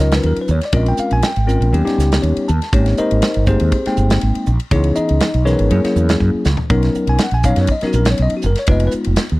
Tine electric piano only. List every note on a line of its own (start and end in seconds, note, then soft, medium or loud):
0.00 0.50 F#3 medium
0.00 0.50 C#4 medium
0.00 0.50 D#4 medium
0.00 0.51 F4 medium
0.00 0.25 A#4 medium
0.00 0.12 D#5 medium
0.15 0.25 B4 medium
0.26 0.38 A#4 medium
0.41 0.51 B4 medium
0.51 0.63 C#5 medium
0.65 0.75 D5 medium
0.73 1.29 G#3 medium
0.73 1.29 C4 medium
0.73 1.29 C#4 medium
0.73 1.29 F4 medium
0.73 1.29 A#4 medium
0.73 0.88 D#5 medium
0.88 0.99 G5 medium
1.00 1.12 F5 medium
1.13 1.24 G#5 loud
1.24 2.19 G5 medium
1.47 1.73 G#3 medium
1.47 1.73 C4 medium
1.47 1.72 C#4 medium
1.47 1.73 F4 medium
1.47 1.73 A#4 medium
1.73 1.84 F#3 medium
1.73 1.84 B3 medium
1.73 1.84 C#4 medium
1.73 1.84 D#4 medium
1.73 1.84 G4 medium
1.85 2.49 G3 medium
1.85 2.49 B3 medium
1.85 2.50 C#4 medium
1.85 2.50 D#4 medium
1.85 2.49 G4 medium
2.22 2.46 C#5 medium
2.48 2.71 A5 medium
2.73 3.28 G#3 medium
2.73 3.28 A#3 medium
2.73 3.28 C4 medium
2.73 2.97 C#4 medium
2.73 2.98 D#4 medium
2.73 3.29 G4 medium
2.73 2.97 C#5 medium
2.98 3.45 D#4 medium
2.98 3.44 A#4 medium
2.98 3.45 C5 medium
2.98 3.44 D#5 loud
3.47 3.75 G#3 medium
3.47 3.75 A#3 medium
3.47 3.85 C4 medium
3.47 3.75 D#4 medium
3.47 4.18 G4 medium
3.47 4.18 G#4 medium
3.47 4.18 C5 medium
3.86 4.49 G#3 medium
3.86 4.49 A#3 medium
3.86 4.49 C4 medium
3.86 4.50 D#4 medium
3.86 4.50 G5 medium
4.72 5.27 E3 medium
4.72 5.27 B3 medium
4.72 5.27 C#4 medium
4.72 4.95 D#4 medium
4.72 4.96 E4 medium
4.72 5.27 G#4 medium
4.72 4.96 C#5 medium
4.96 5.42 D#4 medium
4.96 5.42 D#5 medium
5.45 5.70 E3 medium
5.45 5.70 B3 medium
5.45 5.70 C#4 medium
5.45 5.71 D#4 medium
5.45 5.71 G#4 medium
5.45 6.16 A#4 medium
5.45 5.71 B4 medium
5.45 6.16 C#5 medium
5.71 5.81 F#3 medium
5.71 5.81 A#3 medium
5.71 5.82 C#4 medium
5.71 5.81 E4 medium
5.71 5.82 G#4 medium
5.84 6.48 F#3 medium
5.84 6.48 A#3 medium
5.84 6.48 C#4 medium
5.84 6.48 E4 medium
5.84 6.48 G#4 medium
6.70 7.25 F#3 medium
6.70 7.25 B3 medium
6.70 7.25 C#4 medium
6.70 7.25 D#4 medium
6.70 7.26 A#4 medium
7.09 7.20 G#5 medium
7.23 7.34 F#5 medium
7.34 7.45 G#5 medium
7.44 7.72 F#3 medium
7.44 7.72 B3 medium
7.44 7.73 C#4 medium
7.44 7.73 D#4 medium
7.44 7.60 C#5 medium
7.44 7.57 F5 medium
7.61 7.71 C#5 medium
7.72 7.83 D#5 medium
7.83 8.46 F#3 medium
7.83 8.46 B3 medium
7.83 8.46 C#4 medium
7.83 8.46 D#4 medium
7.83 7.94 A#4 medium
7.87 7.96 F#4 medium
7.96 8.07 A#4 medium
8.11 8.21 C#5 medium
8.22 8.33 D#5 loud
8.37 8.46 F#4 soft
8.46 8.58 A#4 medium
8.59 8.69 C#5 medium
8.68 9.24 G#3 medium
8.68 9.24 B3 medium
8.68 9.24 D#4 medium
8.68 9.24 F4 medium
8.68 8.86 B4 medium
8.68 8.83 D#5 medium
8.87 8.93 B4 medium